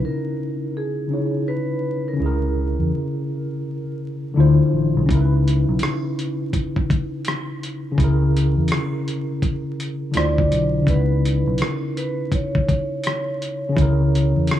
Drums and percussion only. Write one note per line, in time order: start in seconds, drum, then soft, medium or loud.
5.09 kick loud
5.09 closed hi-hat medium
5.48 closed hi-hat medium
5.79 cross-stick loud
5.79 closed hi-hat medium
6.19 closed hi-hat medium
6.53 kick medium
6.53 closed hi-hat medium
6.76 kick medium
6.90 kick medium
6.90 closed hi-hat medium
7.25 cross-stick loud
7.25 closed hi-hat medium
7.63 closed hi-hat medium
7.98 kick loud
7.98 closed hi-hat medium
8.37 closed hi-hat medium
8.68 cross-stick loud
8.68 closed hi-hat medium
9.08 closed hi-hat medium
9.42 kick medium
9.42 closed hi-hat medium
9.80 closed hi-hat medium
10.14 cross-stick loud
10.14 closed hi-hat medium
10.38 kick medium
10.52 closed hi-hat medium
10.87 kick loud
10.87 closed hi-hat medium
11.25 closed hi-hat medium
11.58 cross-stick loud
11.58 closed hi-hat medium
11.97 closed hi-hat medium
12.32 kick medium
12.32 closed hi-hat medium
12.55 kick medium
12.69 kick medium
12.69 closed hi-hat medium
13.04 cross-stick loud
13.04 closed hi-hat medium
13.42 closed hi-hat medium
13.77 kick loud
13.77 closed hi-hat medium
14.15 closed hi-hat medium
14.47 cross-stick loud
14.47 closed hi-hat medium